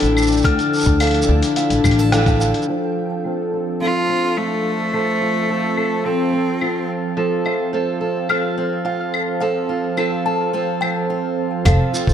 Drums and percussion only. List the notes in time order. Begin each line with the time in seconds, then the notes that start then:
0.00 closed hi-hat
0.03 closed hi-hat, shaker
0.17 claves, shaker
0.22 shaker
0.27 shaker
0.32 shaker
0.37 shaker
0.41 kick, closed hi-hat, shaker
0.59 closed hi-hat, shaker
0.73 shaker
0.76 shaker
0.78 closed hi-hat, shaker
0.80 shaker
0.82 shaker
0.85 kick, shaker
1.00 closed hi-hat, claves, shaker
1.04 closed hi-hat
1.07 closed hi-hat
1.11 closed hi-hat
1.14 closed hi-hat
1.22 shaker
1.43 closed hi-hat, shaker
1.56 closed hi-hat, shaker
1.70 closed hi-hat, shaker
1.84 kick, claves, shaker
1.91 closed hi-hat
1.99 shaker
2.12 cross-stick, closed hi-hat, shaker
2.26 kick, closed hi-hat, shaker
2.41 shaker
2.54 closed hi-hat
2.62 shaker
3.24 claves
4.09 claves
4.93 claves
5.77 claves
6.61 claves
7.46 claves
8.29 claves
9.14 claves
9.98 claves
10.82 claves
11.65 kick, closed hi-hat, claves, shaker
11.94 shaker
12.07 kick, shaker